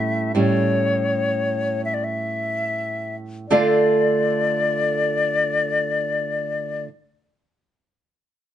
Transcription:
Already playing: A2 G3 C#4 E5
0.35 A2 G3 C#4 C#5
1.85 E5
1.94 D5
2.04 E5
3.48 D3 A3 F4 A4 D5
3.52 D5 F5

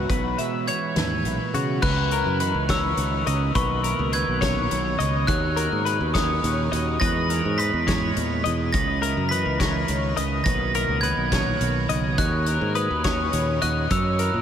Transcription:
Already playing: E3 B3 E4
0.10 B1 B2 B4, kick, closed hi-hat
0.38 G#3 E5, closed hi-hat
0.67 E3 C#5 G#6, closed hi-hat
0.96 D#2 G#2 B4, snare, closed hi-hat
1.25 B1 A#2, closed hi-hat
1.54 B2 C#3 F#4, closed hi-hat
1.82 C#2 C#3 B4 F#6, kick, crash
2.11 E4 A#4, closed hi-hat
2.26 F#2
2.40 E3 D#4 B4, closed hi-hat
2.54 C#2
2.69 E3 C#5 E6, kick, snare, closed hi-hat
2.97 C#2 D#3, closed hi-hat
3.27 C#2 C#3 D#5, closed hi-hat
3.55 B1 B2 D#3 A#3 B3 F#4 B4 C#6, kick, closed hi-hat
3.84 E4 A#4, closed hi-hat
3.99 C#2 F#4
4.12 D#3 B3 B4 G#6, closed hi-hat
4.28 B1
4.41 A#2 C#5, kick, snare, closed hi-hat
4.71 B1 B2, closed hi-hat
4.99 C#2 C#3 D#5, closed hi-hat
5.27 D#2 D#3 A#3 C#4 F#4 C#5 F#6, kick, closed hi-hat
5.56 F#4 A#4, closed hi-hat
5.72 G#2
5.85 A#3 F#4 B4, closed hi-hat
6.01 D#2
6.13 C#4 C#5 D#6, kick, snare, closed hi-hat
6.42 D#2 A#2, closed hi-hat
6.72 D#2 F#4 D#5, closed hi-hat
7.00 E2 E3 G#3 D#4 G#4 B4 A#6, kick, closed hi-hat
7.29 G#4 A#4, closed hi-hat
7.45 G#2
7.58 E3 D#4 B4 B6, closed hi-hat
7.73 E2
7.87 G#2 C#5, kick, snare, closed hi-hat
8.15 E2 A#2, closed hi-hat
8.44 E2 B2 D#5, closed hi-hat
8.73 C#2 C#3 B4 A#6, kick, closed hi-hat
9.02 E4 A#4, closed hi-hat
9.17 F#2
9.29 E3 D#4 B4 B6, closed hi-hat
9.46 C#2
9.59 E3 C#5, kick, snare, closed hi-hat
9.88 C#2 D#3, closed hi-hat
10.17 C#2 C#3 D#5, closed hi-hat
10.44 B1 B2 D#3 A#3 B4 A#6, kick, closed hi-hat
10.48 B3 F#4
10.75 E4 A#4, closed hi-hat
10.89 C#2 F#4
11.01 D#3 B3 B4 G#6, closed hi-hat
11.17 B1
11.32 A#2 C#5, kick, snare, closed hi-hat
11.61 B1 B2, closed hi-hat
11.89 B1 C#3 D#5, closed hi-hat
12.17 D#2 D#3 A#3 C#4 F#4 C#5 F#6, kick, closed hi-hat
12.46 E4 A#4, closed hi-hat
12.61 G#2 F#4
12.75 A#3 F#4 B4 D#6, closed hi-hat
12.90 D#2
13.04 C#4 C#5, kick, snare, closed hi-hat
13.33 D#2 A#2, closed hi-hat
13.62 D#2 F#4 D#5 F#6, closed hi-hat
13.90 F#2 C#5 E6, kick, closed hi-hat
14.19 E4 A#4, closed hi-hat
14.34 A#2

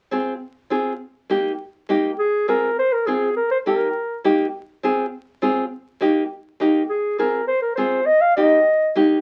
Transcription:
0.11 C4 F4 G#4
0.70 C4 F4 G#4
1.30 A#3 D#4 G4
1.89 A#3 D#4 G4
2.19 G#4
2.48 C4 F4 G#4 A#4
2.79 C5
2.92 A#4
3.06 C4 F4 G#4
3.36 A#4
3.51 C5
3.66 A#3 D#4 G4 A#4
4.24 A#3 D#4 G4
4.83 C4 F4 G#4
5.42 C4 F4 G#4
6.01 A#3 D#4 G4
6.60 A#3 D#4 G4
6.89 G#4
7.18 C4 F4 G#4 A#4
7.47 C5
7.62 A#4
7.75 C4 F4 G#4 C5
8.05 D#5
8.21 F5
8.36 A#3 D#4 G4 D#5
8.95 A#3 D#4 G4

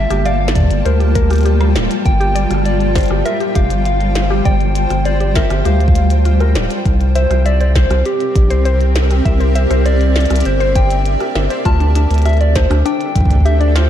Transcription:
Already playing: G3 A#3 F4 E5 G5 A5
0.10 G1 G4, cross-stick, closed hi-hat
0.26 D5 F5, closed hi-hat
0.41 F5
0.48 snare
0.55 D5, kick, closed hi-hat
0.58 kick
0.60 kick
0.63 kick
0.65 kick
0.68 G1, kick, closed hi-hat
0.85 D2 A#4 C5, closed hi-hat
1.00 G4, closed hi-hat
1.15 A#4, kick, closed hi-hat
1.30 G4, cross-stick, closed hi-hat
1.33 closed hi-hat
1.36 closed hi-hat
1.38 closed hi-hat
1.41 closed hi-hat
1.43 G4, closed hi-hat
1.46 closed hi-hat
1.61 cross-stick, closed hi-hat
1.76 D1, snare, closed hi-hat
1.91 closed hi-hat
2.05 G1 G5, kick, closed hi-hat
2.20 G4, closed hi-hat
2.35 D5, closed hi-hat
2.51 G1, cross-stick, closed hi-hat
2.54 cross-stick
2.58 cross-stick
2.62 D5, cross-stick, closed hi-hat
2.68 C5
2.80 closed hi-hat
2.95 C5, kick, snare, closed hi-hat
2.98 closed hi-hat
3.01 closed hi-hat
3.03 closed hi-hat
3.06 closed hi-hat
3.08 G1 G4, cross-stick, closed hi-hat
3.25 A#4 E5, closed hi-hat
3.40 G4, closed hi-hat
3.55 F1 G4 F5, kick, closed hi-hat
3.70 G1, closed hi-hat
3.85 F5, closed hi-hat
4.01 closed hi-hat
4.15 snare, closed hi-hat
4.30 G4, cross-stick
4.45 G1 D5 G5, kick, closed hi-hat
4.61 closed hi-hat
4.75 closed hi-hat
4.90 G1, cross-stick, closed hi-hat
5.05 C5 D5, closed hi-hat
5.20 G4, closed hi-hat
5.35 A#4 E5, kick, snare, closed hi-hat
5.50 G1 G4, cross-stick, closed hi-hat
5.65 D2 G4 F5, closed hi-hat
5.81 closed hi-hat
5.88 kick
5.95 closed hi-hat
6.10 closed hi-hat
6.25 F4, closed hi-hat
6.40 A#4, cross-stick, closed hi-hat
6.55 D1 D5, snare, closed hi-hat
6.71 closed hi-hat
6.85 C2 C4, kick, closed hi-hat
6.99 A#4, closed hi-hat
7.16 C5 E5, closed hi-hat
7.30 C2 G4 C5, cross-stick, closed hi-hat
7.38 E5
7.46 D5 E5, closed hi-hat
7.61 C5 D5, closed hi-hat
7.75 C5, kick, snare, closed hi-hat
7.90 C2, cross-stick, closed hi-hat
8.05 G4, closed hi-hat
8.20 closed hi-hat
8.35 A#1, kick, closed hi-hat
8.50 C2 C5, closed hi-hat
8.65 C5, closed hi-hat
8.72 D5
8.81 closed hi-hat
8.96 snare, closed hi-hat
9.11 cross-stick, closed hi-hat
9.25 C2 E5, kick, closed hi-hat
9.40 C5, closed hi-hat
9.55 C5 E5, closed hi-hat
9.70 C2 C5, cross-stick, closed hi-hat
9.85 C5 D5, closed hi-hat
10.01 D5, closed hi-hat
10.16 snare, closed hi-hat
10.21 closed hi-hat
10.26 closed hi-hat
10.30 C2, cross-stick, closed hi-hat
10.36 closed hi-hat
10.40 closed hi-hat
10.45 G1 C5, closed hi-hat
10.60 C5, closed hi-hat
10.75 C5 G5, kick, closed hi-hat
10.90 closed hi-hat
11.05 closed hi-hat
11.20 cross-stick, closed hi-hat
11.35 G1 E5, snare
11.50 C5, closed hi-hat
11.65 D2 D4 F4 A5, kick, closed hi-hat
11.80 D4, closed hi-hat
11.95 D4, closed hi-hat
12.00 A4
12.11 D2, closed hi-hat
12.14 closed hi-hat
12.18 closed hi-hat
12.22 E5, cross-stick, closed hi-hat
12.26 closed hi-hat
12.29 closed hi-hat
12.33 closed hi-hat
12.37 C5 D5 G5, closed hi-hat
12.41 closed hi-hat
12.56 C5, kick, snare, closed hi-hat
12.70 D2 D4, cross-stick, closed hi-hat
12.85 D4 G5, closed hi-hat
13.01 closed hi-hat
13.15 C2, kick, closed hi-hat
13.20 kick
13.25 kick
13.30 D2, kick, closed hi-hat
13.35 kick
13.40 kick
13.45 G4 E5, closed hi-hat
13.60 D4 D5, closed hi-hat
13.75 F4 C5, snare, closed hi-hat

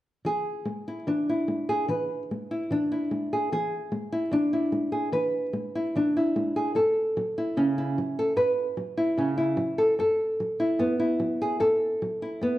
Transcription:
0.25 E3 G#4
0.65 G#3
0.88 E4
1.07 E3 D4
1.29 E4
1.48 G#3
1.69 G#4
1.88 E3 B4
2.31 G#3
2.51 E4
2.71 E3 D4
2.92 E4
3.11 G#3
3.33 G#4
3.52 E3 G#4
3.92 G#3
4.12 E4
4.31 E3 D4
4.53 E4
4.72 G#3
4.92 G#4
5.12 E3 B4
5.53 G#3
5.75 E4
5.96 E3 D4
6.17 E4
6.36 G#3
6.56 G#4
6.75 F#2 A4
7.17 F#3
7.38 E4
7.57 C#3 C#4
7.78 E4
7.98 F#3
8.19 A4
8.36 F#2 B4
8.77 F#3
8.97 E4
9.18 C#3 C#4
9.38 E4
9.57 F#3
9.78 A4
9.99 F#2 A4
10.40 F#3
10.60 E4
10.79 F#2 B3
11.00 E4
11.20 F#3
11.42 G#4
11.60 F#2 A4
12.02 F#3
12.22 E4
12.41 F#2 B3

